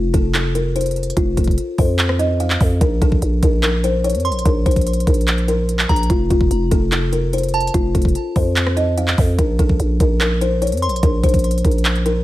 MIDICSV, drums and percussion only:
0, 0, Header, 1, 2, 480
1, 0, Start_track
1, 0, Tempo, 410959
1, 1363, Time_signature, 4, 2, 24, 8
1, 14294, End_track
2, 0, Start_track
2, 0, Title_t, "Drums"
2, 162, Note_on_c, 9, 42, 82
2, 164, Note_on_c, 9, 36, 104
2, 279, Note_off_c, 9, 42, 0
2, 280, Note_off_c, 9, 36, 0
2, 403, Note_on_c, 9, 39, 122
2, 405, Note_on_c, 9, 42, 72
2, 520, Note_off_c, 9, 39, 0
2, 522, Note_off_c, 9, 42, 0
2, 644, Note_on_c, 9, 42, 76
2, 761, Note_off_c, 9, 42, 0
2, 884, Note_on_c, 9, 42, 84
2, 943, Note_off_c, 9, 42, 0
2, 943, Note_on_c, 9, 42, 73
2, 1003, Note_off_c, 9, 42, 0
2, 1003, Note_on_c, 9, 42, 61
2, 1063, Note_off_c, 9, 42, 0
2, 1063, Note_on_c, 9, 42, 51
2, 1123, Note_off_c, 9, 42, 0
2, 1123, Note_on_c, 9, 42, 43
2, 1204, Note_off_c, 9, 42, 0
2, 1204, Note_on_c, 9, 42, 59
2, 1284, Note_off_c, 9, 42, 0
2, 1284, Note_on_c, 9, 42, 76
2, 1364, Note_off_c, 9, 42, 0
2, 1364, Note_on_c, 9, 36, 124
2, 1364, Note_on_c, 9, 42, 94
2, 1480, Note_off_c, 9, 36, 0
2, 1481, Note_off_c, 9, 42, 0
2, 1604, Note_on_c, 9, 36, 90
2, 1604, Note_on_c, 9, 42, 72
2, 1684, Note_off_c, 9, 42, 0
2, 1684, Note_on_c, 9, 42, 58
2, 1721, Note_off_c, 9, 36, 0
2, 1723, Note_on_c, 9, 36, 87
2, 1764, Note_off_c, 9, 42, 0
2, 1764, Note_on_c, 9, 42, 42
2, 1840, Note_off_c, 9, 36, 0
2, 1843, Note_off_c, 9, 42, 0
2, 1843, Note_on_c, 9, 42, 81
2, 1959, Note_off_c, 9, 42, 0
2, 2083, Note_on_c, 9, 46, 59
2, 2084, Note_on_c, 9, 36, 102
2, 2199, Note_off_c, 9, 46, 0
2, 2200, Note_off_c, 9, 36, 0
2, 2322, Note_on_c, 9, 39, 125
2, 2325, Note_on_c, 9, 42, 68
2, 2439, Note_off_c, 9, 39, 0
2, 2441, Note_off_c, 9, 42, 0
2, 2442, Note_on_c, 9, 37, 101
2, 2559, Note_off_c, 9, 37, 0
2, 2563, Note_on_c, 9, 42, 70
2, 2680, Note_off_c, 9, 42, 0
2, 2804, Note_on_c, 9, 42, 81
2, 2920, Note_off_c, 9, 42, 0
2, 2923, Note_on_c, 9, 39, 104
2, 3040, Note_off_c, 9, 39, 0
2, 3043, Note_on_c, 9, 46, 55
2, 3044, Note_on_c, 9, 36, 94
2, 3160, Note_off_c, 9, 46, 0
2, 3161, Note_off_c, 9, 36, 0
2, 3283, Note_on_c, 9, 36, 122
2, 3283, Note_on_c, 9, 42, 94
2, 3400, Note_off_c, 9, 36, 0
2, 3400, Note_off_c, 9, 42, 0
2, 3523, Note_on_c, 9, 42, 71
2, 3524, Note_on_c, 9, 36, 91
2, 3640, Note_off_c, 9, 36, 0
2, 3640, Note_off_c, 9, 42, 0
2, 3643, Note_on_c, 9, 36, 88
2, 3760, Note_off_c, 9, 36, 0
2, 3762, Note_on_c, 9, 42, 81
2, 3879, Note_off_c, 9, 42, 0
2, 4002, Note_on_c, 9, 42, 82
2, 4003, Note_on_c, 9, 36, 104
2, 4119, Note_off_c, 9, 42, 0
2, 4120, Note_off_c, 9, 36, 0
2, 4242, Note_on_c, 9, 39, 123
2, 4244, Note_on_c, 9, 42, 70
2, 4359, Note_off_c, 9, 39, 0
2, 4361, Note_off_c, 9, 42, 0
2, 4483, Note_on_c, 9, 42, 78
2, 4600, Note_off_c, 9, 42, 0
2, 4724, Note_on_c, 9, 42, 81
2, 4784, Note_off_c, 9, 42, 0
2, 4784, Note_on_c, 9, 42, 72
2, 4843, Note_off_c, 9, 42, 0
2, 4843, Note_on_c, 9, 42, 62
2, 4904, Note_off_c, 9, 42, 0
2, 4904, Note_on_c, 9, 42, 52
2, 4964, Note_off_c, 9, 42, 0
2, 4964, Note_on_c, 9, 42, 43
2, 5044, Note_off_c, 9, 42, 0
2, 5044, Note_on_c, 9, 42, 58
2, 5124, Note_off_c, 9, 42, 0
2, 5124, Note_on_c, 9, 42, 77
2, 5204, Note_off_c, 9, 42, 0
2, 5204, Note_on_c, 9, 36, 127
2, 5204, Note_on_c, 9, 42, 96
2, 5320, Note_off_c, 9, 36, 0
2, 5320, Note_off_c, 9, 42, 0
2, 5443, Note_on_c, 9, 42, 58
2, 5444, Note_on_c, 9, 36, 93
2, 5503, Note_off_c, 9, 42, 0
2, 5503, Note_on_c, 9, 42, 60
2, 5560, Note_off_c, 9, 36, 0
2, 5562, Note_off_c, 9, 42, 0
2, 5562, Note_on_c, 9, 42, 59
2, 5563, Note_on_c, 9, 36, 87
2, 5623, Note_off_c, 9, 42, 0
2, 5623, Note_on_c, 9, 42, 59
2, 5680, Note_off_c, 9, 36, 0
2, 5683, Note_off_c, 9, 42, 0
2, 5683, Note_on_c, 9, 42, 83
2, 5764, Note_off_c, 9, 42, 0
2, 5764, Note_on_c, 9, 42, 78
2, 5843, Note_off_c, 9, 42, 0
2, 5843, Note_on_c, 9, 42, 72
2, 5923, Note_off_c, 9, 42, 0
2, 5923, Note_on_c, 9, 36, 102
2, 5923, Note_on_c, 9, 42, 63
2, 6004, Note_off_c, 9, 42, 0
2, 6004, Note_on_c, 9, 42, 57
2, 6040, Note_off_c, 9, 36, 0
2, 6084, Note_off_c, 9, 42, 0
2, 6084, Note_on_c, 9, 42, 50
2, 6163, Note_on_c, 9, 39, 123
2, 6164, Note_off_c, 9, 42, 0
2, 6164, Note_on_c, 9, 42, 72
2, 6280, Note_off_c, 9, 39, 0
2, 6281, Note_off_c, 9, 42, 0
2, 6284, Note_on_c, 9, 42, 45
2, 6401, Note_off_c, 9, 42, 0
2, 6404, Note_on_c, 9, 42, 70
2, 6521, Note_off_c, 9, 42, 0
2, 6644, Note_on_c, 9, 42, 86
2, 6761, Note_off_c, 9, 42, 0
2, 6763, Note_on_c, 9, 39, 106
2, 6880, Note_off_c, 9, 39, 0
2, 6884, Note_on_c, 9, 36, 92
2, 6884, Note_on_c, 9, 42, 44
2, 6964, Note_off_c, 9, 42, 0
2, 6964, Note_on_c, 9, 42, 60
2, 7001, Note_off_c, 9, 36, 0
2, 7044, Note_off_c, 9, 42, 0
2, 7044, Note_on_c, 9, 42, 76
2, 7124, Note_off_c, 9, 42, 0
2, 7124, Note_on_c, 9, 36, 127
2, 7124, Note_on_c, 9, 42, 93
2, 7240, Note_off_c, 9, 36, 0
2, 7241, Note_off_c, 9, 42, 0
2, 7364, Note_on_c, 9, 36, 92
2, 7364, Note_on_c, 9, 42, 70
2, 7480, Note_off_c, 9, 42, 0
2, 7481, Note_off_c, 9, 36, 0
2, 7483, Note_on_c, 9, 36, 86
2, 7600, Note_off_c, 9, 36, 0
2, 7602, Note_on_c, 9, 42, 84
2, 7719, Note_off_c, 9, 42, 0
2, 7842, Note_on_c, 9, 42, 85
2, 7843, Note_on_c, 9, 36, 101
2, 7959, Note_off_c, 9, 42, 0
2, 7960, Note_off_c, 9, 36, 0
2, 8083, Note_on_c, 9, 39, 125
2, 8085, Note_on_c, 9, 42, 70
2, 8199, Note_off_c, 9, 39, 0
2, 8202, Note_off_c, 9, 42, 0
2, 8324, Note_on_c, 9, 42, 78
2, 8440, Note_off_c, 9, 42, 0
2, 8564, Note_on_c, 9, 42, 86
2, 8623, Note_off_c, 9, 42, 0
2, 8623, Note_on_c, 9, 42, 71
2, 8683, Note_off_c, 9, 42, 0
2, 8683, Note_on_c, 9, 42, 63
2, 8743, Note_off_c, 9, 42, 0
2, 8743, Note_on_c, 9, 42, 51
2, 8803, Note_off_c, 9, 42, 0
2, 8803, Note_on_c, 9, 42, 44
2, 8883, Note_off_c, 9, 42, 0
2, 8883, Note_on_c, 9, 42, 58
2, 8963, Note_off_c, 9, 42, 0
2, 8963, Note_on_c, 9, 42, 79
2, 9043, Note_on_c, 9, 36, 125
2, 9044, Note_off_c, 9, 42, 0
2, 9044, Note_on_c, 9, 42, 92
2, 9160, Note_off_c, 9, 36, 0
2, 9161, Note_off_c, 9, 42, 0
2, 9283, Note_on_c, 9, 36, 90
2, 9283, Note_on_c, 9, 42, 73
2, 9364, Note_off_c, 9, 42, 0
2, 9364, Note_on_c, 9, 42, 56
2, 9400, Note_off_c, 9, 36, 0
2, 9403, Note_on_c, 9, 36, 91
2, 9443, Note_off_c, 9, 42, 0
2, 9443, Note_on_c, 9, 42, 42
2, 9520, Note_off_c, 9, 36, 0
2, 9521, Note_off_c, 9, 42, 0
2, 9521, Note_on_c, 9, 42, 82
2, 9638, Note_off_c, 9, 42, 0
2, 9762, Note_on_c, 9, 46, 59
2, 9763, Note_on_c, 9, 36, 104
2, 9878, Note_off_c, 9, 46, 0
2, 9880, Note_off_c, 9, 36, 0
2, 10002, Note_on_c, 9, 39, 121
2, 10004, Note_on_c, 9, 42, 72
2, 10119, Note_off_c, 9, 39, 0
2, 10121, Note_off_c, 9, 42, 0
2, 10122, Note_on_c, 9, 37, 105
2, 10239, Note_off_c, 9, 37, 0
2, 10243, Note_on_c, 9, 42, 72
2, 10359, Note_off_c, 9, 42, 0
2, 10483, Note_on_c, 9, 42, 82
2, 10600, Note_off_c, 9, 42, 0
2, 10602, Note_on_c, 9, 39, 106
2, 10719, Note_off_c, 9, 39, 0
2, 10722, Note_on_c, 9, 46, 54
2, 10723, Note_on_c, 9, 36, 93
2, 10839, Note_off_c, 9, 46, 0
2, 10840, Note_off_c, 9, 36, 0
2, 10963, Note_on_c, 9, 36, 123
2, 10963, Note_on_c, 9, 42, 93
2, 11080, Note_off_c, 9, 36, 0
2, 11080, Note_off_c, 9, 42, 0
2, 11203, Note_on_c, 9, 36, 90
2, 11203, Note_on_c, 9, 42, 70
2, 11320, Note_off_c, 9, 36, 0
2, 11320, Note_off_c, 9, 42, 0
2, 11323, Note_on_c, 9, 36, 91
2, 11439, Note_off_c, 9, 36, 0
2, 11442, Note_on_c, 9, 42, 78
2, 11559, Note_off_c, 9, 42, 0
2, 11682, Note_on_c, 9, 42, 80
2, 11683, Note_on_c, 9, 36, 100
2, 11798, Note_off_c, 9, 42, 0
2, 11800, Note_off_c, 9, 36, 0
2, 11922, Note_on_c, 9, 39, 122
2, 11924, Note_on_c, 9, 42, 68
2, 12039, Note_off_c, 9, 39, 0
2, 12041, Note_off_c, 9, 42, 0
2, 12164, Note_on_c, 9, 42, 77
2, 12280, Note_off_c, 9, 42, 0
2, 12403, Note_on_c, 9, 42, 85
2, 12463, Note_off_c, 9, 42, 0
2, 12463, Note_on_c, 9, 42, 73
2, 12524, Note_off_c, 9, 42, 0
2, 12524, Note_on_c, 9, 42, 63
2, 12583, Note_off_c, 9, 42, 0
2, 12583, Note_on_c, 9, 42, 51
2, 12643, Note_off_c, 9, 42, 0
2, 12643, Note_on_c, 9, 42, 44
2, 12723, Note_off_c, 9, 42, 0
2, 12723, Note_on_c, 9, 42, 58
2, 12803, Note_off_c, 9, 42, 0
2, 12803, Note_on_c, 9, 42, 76
2, 12883, Note_off_c, 9, 42, 0
2, 12883, Note_on_c, 9, 36, 127
2, 12883, Note_on_c, 9, 42, 92
2, 13000, Note_off_c, 9, 36, 0
2, 13000, Note_off_c, 9, 42, 0
2, 13123, Note_on_c, 9, 36, 90
2, 13123, Note_on_c, 9, 42, 59
2, 13183, Note_off_c, 9, 42, 0
2, 13183, Note_on_c, 9, 42, 60
2, 13240, Note_off_c, 9, 36, 0
2, 13243, Note_off_c, 9, 42, 0
2, 13243, Note_on_c, 9, 36, 84
2, 13243, Note_on_c, 9, 42, 58
2, 13303, Note_off_c, 9, 42, 0
2, 13303, Note_on_c, 9, 42, 58
2, 13360, Note_off_c, 9, 36, 0
2, 13363, Note_off_c, 9, 42, 0
2, 13363, Note_on_c, 9, 42, 83
2, 13443, Note_off_c, 9, 42, 0
2, 13443, Note_on_c, 9, 42, 75
2, 13523, Note_off_c, 9, 42, 0
2, 13523, Note_on_c, 9, 42, 70
2, 13602, Note_off_c, 9, 42, 0
2, 13602, Note_on_c, 9, 42, 66
2, 13603, Note_on_c, 9, 36, 104
2, 13683, Note_off_c, 9, 42, 0
2, 13683, Note_on_c, 9, 42, 58
2, 13720, Note_off_c, 9, 36, 0
2, 13762, Note_off_c, 9, 42, 0
2, 13762, Note_on_c, 9, 42, 49
2, 13842, Note_on_c, 9, 39, 125
2, 13843, Note_off_c, 9, 42, 0
2, 13843, Note_on_c, 9, 42, 72
2, 13959, Note_off_c, 9, 39, 0
2, 13960, Note_off_c, 9, 42, 0
2, 13963, Note_on_c, 9, 42, 44
2, 14080, Note_off_c, 9, 42, 0
2, 14083, Note_on_c, 9, 42, 70
2, 14200, Note_off_c, 9, 42, 0
2, 14294, End_track
0, 0, End_of_file